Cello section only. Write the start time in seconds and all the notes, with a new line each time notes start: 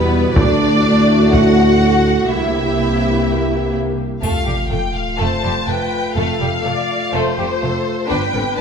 Already playing: B3
0.37 D4
1.33 F#4
2.30 E4
4.24 F2
4.47 F2
4.72 F2
5.20 F2
5.45 F2
5.69 F2
6.18 F2
6.43 F2
6.67 F2
7.15 F2
7.39 F2
7.63 F2
8.12 G2
8.36 G2